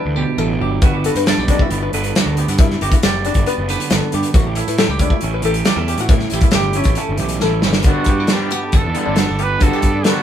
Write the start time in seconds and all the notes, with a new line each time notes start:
Already playing: E3 G3 D4 E4 G4 B4
0.06 D2
0.16 B2 G4
0.38 A1 E3 A4
0.60 G1 F#3 G4
0.82 G1 G2 G3 B3 F#4 B4, kick, closed hi-hat
0.94 G4
1.04 F#4 A4, closed hi-hat
1.15 G2 B4, closed hi-hat
1.26 A4 D5, snare, closed hi-hat
1.38 B1 G4
1.48 G3 D4 F#4, kick, closed hi-hat
1.59 E4, kick
1.70 G1 B3, closed hi-hat
1.82 B4
1.93 G1 D3 A4 B4, closed hi-hat
2.04 closed hi-hat
2.15 F#4 G4, snare, closed hi-hat
2.26 D2 A4
2.37 B3 G4, closed hi-hat
2.48 G2 F#4, closed hi-hat
2.58 E4, kick, closed hi-hat
2.70 snare
2.81 G1 F#4 G4, closed hi-hat
2.91 E4, kick, closed hi-hat
3.03 F#1 G4 D5, snare, closed hi-hat
3.25 G3 D4 F#4, closed hi-hat
3.34 G1, kick, closed hi-hat
3.46 B3 B4, closed hi-hat
3.58 F#1
3.69 D3 G4 B4, closed hi-hat
3.80 closed hi-hat
3.90 G1 A4, snare, closed hi-hat
4.12 G2 G4, closed hi-hat
4.23 closed hi-hat
4.34 A1 A2 F#4, kick, closed hi-hat
4.47 G4
4.55 E4 A4, closed hi-hat
4.68 A2 B4, closed hi-hat
4.78 G4 A4, snare, closed hi-hat
4.88 C#2 G4
4.99 A3 D4 E4, kick, closed hi-hat
5.10 E4, kick
5.21 A1 C#4, closed hi-hat
5.34 B4
5.42 A1 E3 G4 A4, closed hi-hat
5.54 closed hi-hat
5.65 D4 G4, snare, closed hi-hat
5.76 E2 E4 A4
5.87 C#4 G4, closed hi-hat
5.98 A2 F#4, closed hi-hat
6.09 A2 E4, kick, closed hi-hat
6.19 snare
6.30 A1 E4 G4, closed hi-hat
6.41 E4, kick, closed hi-hat
6.51 G1 G4, snare, closed hi-hat
6.73 A3 C#4 E4, closed hi-hat
6.84 A1, kick, closed hi-hat
6.95 C#4 A4, closed hi-hat
7.09 G1
7.18 B1 E3 G4, closed hi-hat
7.29 closed hi-hat
7.40 A1 E4 A4, snare
7.62 G1 C#4 G4, snare
7.73 snare
7.83 G1 G2 D3 F#4, kick, closed hi-hat
7.87 G3 B3 D4
7.91 F#4
8.04 G2 B3, kick, closed hi-hat
8.09 G4, muted overdriven electric guitar stroke
8.20 E4
8.27 D3 G3 D4, snare, closed hi-hat
8.31 G3 B3 D4 G4
8.51 B3 F#4, muted overdriven electric guitar stroke, closed hi-hat
8.63 A4
8.72 G1 D4 F#4, muted overdriven electric guitar stroke, kick, closed hi-hat
8.77 A4
8.84 E2 A4
8.94 D3 G3 B3 D4, closed hi-hat
9.00 A4
9.06 G1 D4
9.16 D4 F#4, muted overdriven electric guitar stroke, snare, closed hi-hat
9.28 G1 D4
9.39 B3 G4 B4, muted overdriven electric guitar stroke, closed hi-hat
9.59 G1 G2 D3 G3 B3 D4 F#4 A4, kick, closed hi-hat
9.73 G4
9.82 G2 B3, muted overdriven electric guitar stroke, kick, closed hi-hat
9.95 D4
10.04 D3 G3 B3 D4 F#4 A4, snare, closed hi-hat